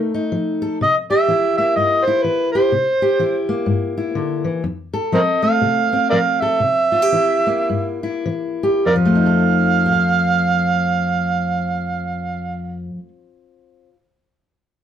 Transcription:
Already playing: steel-string acoustic guitar C3 A3 D#4 A4
0.14 steel-string acoustic guitar D#4
0.32 steel-string acoustic guitar F3
0.62 steel-string acoustic guitar A4
0.81 steel-string acoustic guitar C3, harmonica D#5
1.10 steel-string acoustic guitar G4, harmonica E5
1.28 steel-string acoustic guitar E3 E4
1.57 steel-string acoustic guitar A#3, harmonica E5
1.76 steel-string acoustic guitar G2, harmonica D#5
2.04 steel-string acoustic guitar E4, harmonica C5
2.23 steel-string acoustic guitar E3, harmonica B4
2.52 steel-string acoustic guitar G4, harmonica C5
2.72 steel-string acoustic guitar C3
3.02 steel-string acoustic guitar G4
3.19 steel-string acoustic guitar E3 E4
3.49 steel-string acoustic guitar A#3
3.66 steel-string acoustic guitar G2
3.97 steel-string acoustic guitar E4
4.15 steel-string acoustic guitar D3
4.44 steel-string acoustic guitar E3
4.64 steel-string acoustic guitar F2
4.93 steel-string acoustic guitar A4
5.12 steel-string acoustic guitar F3 C4, harmonica A#4 C5 D#5
5.42 steel-string acoustic guitar A3, harmonica F5
5.62 steel-string acoustic guitar C3
5.93 steel-string acoustic guitar C4
6.10 steel-string acoustic guitar F3, harmonica A#4 D5 F5
6.40 steel-string acoustic guitar A4, harmonica E5
6.60 steel-string acoustic guitar C3
6.92 steel-string acoustic guitar F4
7.02 steel-string acoustic guitar G4
7.12 steel-string acoustic guitar E3 E4
7.47 steel-string acoustic guitar A#3
7.70 steel-string acoustic guitar G2
8.03 steel-string acoustic guitar E4
8.26 steel-string acoustic guitar E3
8.63 steel-string acoustic guitar G4
8.86 steel-string acoustic guitar F2, harmonica A#4 D5 F5
8.96 steel-string acoustic guitar F3
9.05 steel-string acoustic guitar A3
9.15 steel-string acoustic guitar D#4
9.26 steel-string acoustic guitar A4
9.86 steel-string acoustic guitar C5
9.92 steel-string acoustic guitar F5

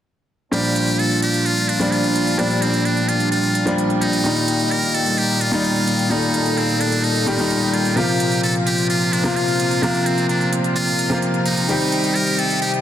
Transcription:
0.51 grand piano A#2 F3 G3 D4, string section A#2 G3 D4 F4, muted trumpet G4, closed hi-hat
0.64 closed hi-hat
0.76 closed hi-hat
0.88 closed hi-hat
0.99 muted trumpet A4, closed hi-hat
1.11 closed hi-hat
1.22 muted trumpet G4, closed hi-hat
1.34 closed hi-hat
1.46 muted trumpet F4, closed hi-hat
1.57 closed hi-hat
1.69 muted trumpet D4, closed hi-hat
1.79 grand piano A#2 F3 G3 D4, closed hi-hat
1.92 muted trumpet F4, closed hi-hat
2.04 closed hi-hat
2.16 closed hi-hat
2.27 closed hi-hat
2.38 grand piano A#2 F3 G3 D4, muted trumpet D4, string section G4, closed hi-hat
2.50 closed hi-hat
2.62 muted trumpet C4, closed hi-hat
2.74 closed hi-hat
2.85 muted trumpet D4, closed hi-hat
2.97 closed hi-hat
3.09 muted trumpet F4, closed hi-hat
3.20 closed hi-hat
3.32 muted trumpet F4, closed hi-hat
3.44 closed hi-hat
3.55 closed hi-hat
3.65 grand piano A#2 F3 G3 D4, closed hi-hat
3.78 closed hi-hat
3.90 closed hi-hat
4.02 muted trumpet D#4, closed hi-hat
4.13 closed hi-hat
4.24 grand piano A#2 D#3 G3 D#4, string section D#4, closed hi-hat
4.36 closed hi-hat
4.48 closed hi-hat
4.60 closed hi-hat
4.71 muted trumpet A#4, closed hi-hat
4.83 closed hi-hat
4.94 muted trumpet A4, closed hi-hat
5.06 closed hi-hat
5.18 muted trumpet G4, closed hi-hat
5.29 closed hi-hat
5.41 muted trumpet F4, closed hi-hat
5.51 grand piano A#2 D#3 G3 D#4, closed hi-hat
5.64 closed hi-hat
5.76 closed hi-hat
5.88 closed hi-hat
5.99 closed hi-hat
6.10 grand piano A#2 D#3 G3 D#4, muted trumpet D#4, string section A4, closed hi-hat
6.22 closed hi-hat
6.34 closed hi-hat
6.46 closed hi-hat
6.57 muted trumpet C4, closed hi-hat
6.69 closed hi-hat
6.81 muted trumpet D4, closed hi-hat
6.92 closed hi-hat
7.04 muted trumpet D#4, closed hi-hat
7.15 closed hi-hat
7.26 grand piano A#2 D#3 G3 G4, closed hi-hat
7.37 grand piano A#2 D#3 G3 D#4, closed hi-hat
7.50 closed hi-hat
7.62 closed hi-hat
7.74 muted trumpet F4, closed hi-hat
7.85 closed hi-hat
7.96 grand piano C3 F3 A#3 F4, string section F3 C4 F4, muted trumpet G4, closed hi-hat
8.08 closed hi-hat
8.20 closed hi-hat
8.32 closed hi-hat
8.43 muted trumpet A4, closed hi-hat
8.55 closed hi-hat
8.67 muted trumpet G4, closed hi-hat
8.78 closed hi-hat
8.90 muted trumpet F4, closed hi-hat
9.01 closed hi-hat
9.13 muted trumpet D4, closed hi-hat
9.24 grand piano C3 F3 A#3 F4, closed hi-hat
9.36 muted trumpet F4, closed hi-hat
9.48 closed hi-hat
9.60 closed hi-hat
9.71 closed hi-hat
9.82 grand piano C3 F3 A#3 F4, muted trumpet D4, closed hi-hat
9.94 closed hi-hat
10.06 muted trumpet C4, closed hi-hat
10.18 closed hi-hat
10.29 muted trumpet D4, closed hi-hat
10.41 closed hi-hat
10.53 closed hi-hat
10.64 closed hi-hat
10.76 muted trumpet F4, closed hi-hat
10.87 closed hi-hat
10.99 closed hi-hat
11.10 grand piano C3 F3 A#3 F4, closed hi-hat
11.22 closed hi-hat
11.34 closed hi-hat
11.46 muted trumpet D#4, closed hi-hat
11.57 closed hi-hat
11.68 string section C3 G3 D#4 G4, grand piano D#3 G3 C4 G4, closed hi-hat
11.81 closed hi-hat
11.92 closed hi-hat
12.04 closed hi-hat
12.15 muted trumpet A#4, closed hi-hat
12.27 closed hi-hat
12.39 muted trumpet A4, closed hi-hat
12.50 closed hi-hat
12.62 muted trumpet G4, closed hi-hat
12.74 closed hi-hat

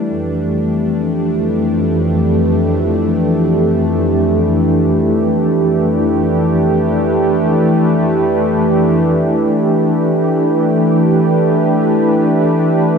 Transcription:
Already playing: analog synth pad E3 A3 D4 G4 B4, synth drone G3 D4
0.09 analog synth pad F2

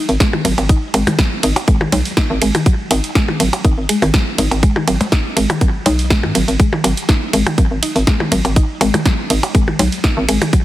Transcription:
0.09 fm bass G#1, open hi-hat
0.20 synth arpeggio sound G#3, kick, snare, closed hi-hat
0.33 synth arpeggio sound D#3, percussion blips
0.45 fm bass G#1, synth arpeggio sound F#3, open hi-hat, ride, percussion blips
0.58 fm bass G#1, closed hi-hat, percussion blips
0.69 synth arpeggio sound D#4, kick, closed hi-hat
0.94 fm bass G#1, synth arpeggio sound G#3, open hi-hat, ride, percussion blips
1.07 synth arpeggio sound D#3, closed hi-hat, percussion blips
1.19 synth arpeggio sound F#3, kick, snare, closed hi-hat
1.43 fm bass G#1, synth arpeggio sound D#4, open hi-hat, ride
1.56 closed hi-hat, percussion blips
1.68 fm bass G#1, synth arpeggio sound G#3, kick, closed hi-hat
1.81 synth arpeggio sound D#3, percussion blips
1.92 fm bass B1, synth arpeggio sound F#3, open hi-hat, ride, percussion blips
2.05 open hi-hat
2.17 synth arpeggio sound D#4, kick, snare, closed hi-hat
2.30 fm bass G#1
2.42 fm bass G#1, synth arpeggio sound G#3, open hi-hat, ride
2.55 synth arpeggio sound D#3, closed hi-hat, percussion blips
2.66 synth arpeggio sound F#3, kick, closed hi-hat
2.91 fm bass G#1, synth arpeggio sound D#4, open hi-hat, ride, percussion blips
3.04 closed hi-hat
3.15 synth arpeggio sound G#3, kick, snare, closed hi-hat
3.28 synth arpeggio sound D#3, percussion blips
3.40 fm bass G#1, synth arpeggio sound F#3, open hi-hat, ride
3.53 closed hi-hat, percussion blips
3.65 fm bass G#1, synth arpeggio sound D#4, kick, closed hi-hat
3.78 fm bass G#1
3.89 synth arpeggio sound G#3, open hi-hat, ride
4.02 fm bass G#1, synth arpeggio sound D#3, open hi-hat, percussion blips
4.14 synth arpeggio sound F#3, kick, snare, closed hi-hat
4.38 fm bass G#1, synth arpeggio sound D#4, open hi-hat, ride, percussion blips
4.51 fm bass G#1, closed hi-hat, percussion blips
4.63 synth arpeggio sound G#3, kick, closed hi-hat
4.76 synth arpeggio sound D#3, percussion blips
4.87 fm bass G#1, synth arpeggio sound F#3, open hi-hat, ride, percussion blips
5.01 closed hi-hat, percussion blips
5.12 synth arpeggio sound D#4, kick, snare, closed hi-hat
5.37 fm bass G#1, synth arpeggio sound G#3, open hi-hat, ride
5.50 synth arpeggio sound D#3, closed hi-hat, percussion blips
5.61 fm bass G#1, synth arpeggio sound F#3, kick, closed hi-hat
5.86 fm bass B1, synth arpeggio sound D#4, open hi-hat, ride, percussion blips
5.99 open hi-hat
6.10 synth arpeggio sound G#3, kick, snare, closed hi-hat
6.23 fm bass G#2, synth arpeggio sound D#3, percussion blips
6.35 fm bass G#1, synth arpeggio sound F#3, open hi-hat, ride
6.48 fm bass G#1, closed hi-hat
6.60 synth arpeggio sound G#3, kick, closed hi-hat
6.73 synth arpeggio sound D#3, percussion blips
6.84 fm bass G#1, synth arpeggio sound F#3, open hi-hat, ride, percussion blips
6.97 closed hi-hat
7.09 synth arpeggio sound D#4, kick, snare, closed hi-hat
7.33 fm bass G#1, synth arpeggio sound G#3, open hi-hat, ride
7.46 synth arpeggio sound D#3, closed hi-hat, percussion blips
7.58 fm bass G#1, synth arpeggio sound F#3, kick, closed hi-hat
7.71 fm bass G#1
7.83 synth arpeggio sound D#4, open hi-hat, ride
7.96 fm bass G#1, open hi-hat
8.07 synth arpeggio sound G#3, kick, snare, closed hi-hat
8.20 synth arpeggio sound D#3, percussion blips
8.32 fm bass G#1, synth arpeggio sound F#3, open hi-hat, ride, percussion blips
8.45 fm bass G#1, closed hi-hat, percussion blips
8.56 synth arpeggio sound D#4, kick, closed hi-hat
8.81 fm bass G#1, synth arpeggio sound G#3, open hi-hat, ride, percussion blips
8.94 synth arpeggio sound D#3, closed hi-hat, percussion blips
9.05 synth arpeggio sound F#3, kick, snare, closed hi-hat
9.30 fm bass G#1, synth arpeggio sound D#4, open hi-hat, ride
9.43 closed hi-hat, percussion blips
9.55 fm bass G#1, synth arpeggio sound G#3, kick, closed hi-hat
9.68 synth arpeggio sound D#3, percussion blips
9.79 fm bass B1, synth arpeggio sound F#3, open hi-hat, ride, percussion blips
9.92 open hi-hat
10.04 synth arpeggio sound D#4, kick, snare, closed hi-hat
10.17 fm bass G#1
10.28 fm bass G#1, synth arpeggio sound G#3, open hi-hat, ride
10.42 synth arpeggio sound D#3, closed hi-hat, percussion blips
10.53 synth arpeggio sound F#3, kick, closed hi-hat

